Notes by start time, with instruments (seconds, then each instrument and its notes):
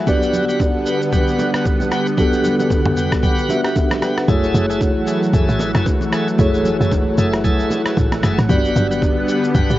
Already playing: analog synth pad F#5
0.06 analog synth pad D3 G3 B3, tine electric piano B3 D4 F#4 G4 D5, tonewheel organ G4 B4 F#5, kick, low conga, shaker
0.23 shaker
0.33 low conga, shaker
0.49 tonewheel organ G4 B4 F#5, shaker
0.60 kick, high bongo, shaker
0.86 tonewheel organ G4 B4 F#5, shaker
1.02 shaker
1.12 tonewheel organ G4 B4 F#5, kick, low conga, shaker
1.28 shaker
1.39 high bongo, low bongo, shaker
1.54 tonewheel organ G4 B4 F#5, cross-stick, shaker
1.65 kick, high bongo, shaker
1.80 low bongo, shaker
1.91 tonewheel organ G4 B4 F#5, cross-stick, shaker
2.07 shaker
2.17 tine electric piano B3 D4 F#4 G4 A4, tonewheel organ G4 B4 F#5, kick, low conga, shaker
2.33 shaker
2.44 low conga, shaker
2.59 tonewheel organ G4 B4 F#5, low bongo, shaker
2.70 kick, high bongo, shaker
2.86 mid tom
2.97 tonewheel organ G4 B4 F#5, shaker
3.12 kick, cross-stick, high bongo, shaker
3.23 tonewheel organ G4 B4 F#5, kick, low conga, shaker
3.38 shaker
3.49 tine electric piano B3 D4 F#4 G4 E5, high bongo, low bongo, shaker
3.64 tonewheel organ G4 B4 F#5, cross-stick, shaker
3.76 kick, high bongo, shaker
3.90 cross-stick, low bongo, shaker
4.02 tonewheel organ G4 B4 F#5, cross-stick, low bongo, shaker
4.17 cross-stick, shaker
4.28 log drum bass F#1, analog synth pad E3 F#3 A3, tine electric piano A3 E4 F#4 G#4 C#5, tonewheel organ G#4 A4 E5, kick, low conga, shaker
4.44 shaker
4.54 log drum bass F#1, low conga, shaker
4.70 tonewheel organ G#4 A4 E5, shaker
4.81 kick, high bongo, shaker
5.07 tonewheel organ G#4 A4 E5, shaker
5.23 shaker
5.33 log drum bass F#1, tonewheel organ G#4 A4 E5, kick, low conga, shaker
5.49 log drum bass A1, shaker
5.60 high bongo, low bongo, shaker
5.75 log drum bass F#1, tonewheel organ G#4 A4 E5, cross-stick, shaker
5.86 kick, high bongo, shaker
6.01 low bongo, shaker
6.12 tonewheel organ G#4 A4 E5, cross-stick, shaker
6.28 shaker
6.38 log drum bass F#1, tine electric piano A3 E4 F#4 G#4 C#5, tonewheel organ G#4 A4 E5, kick, low conga, shaker
6.54 shaker
6.65 low conga, shaker
6.80 log drum bass F#1, tonewheel organ G#4 A4 E5, shaker
6.92 kick, high bongo, shaker
7.18 log drum bass F#1, tonewheel organ G#4 A4 E5, shaker
7.33 cross-stick, shaker
7.44 tonewheel organ G#4 A4 E5, kick, low conga, shaker
7.59 shaker
7.70 high bongo, low bongo, shaker
7.86 tonewheel organ G#4 A4 E5, cross-stick, shaker
7.97 log drum bass A1, kick, high bongo, shaker
8.12 cross-stick, low bongo, shaker
8.23 log drum bass F#1, tonewheel organ G#4 A4 E5, cross-stick, shaker
8.38 log drum bass A1, cross-stick, shaker
8.49 log drum bass G1, analog synth pad D3 G3 B3 F#5, tine electric piano B3 D4 F#4 G4 D5, tonewheel organ G4 B4 F#5, kick, low conga, shaker
8.65 shaker
8.76 log drum bass G1, low conga, shaker
8.91 tonewheel organ G4 B4 F#5, shaker
9.02 kick, high bongo, shaker
9.28 tonewheel organ G4 B4 F#5, shaker
9.44 shaker
9.54 log drum bass G1, tonewheel organ G4 B4 F#5, kick, low conga, shaker
9.70 log drum bass A1, shaker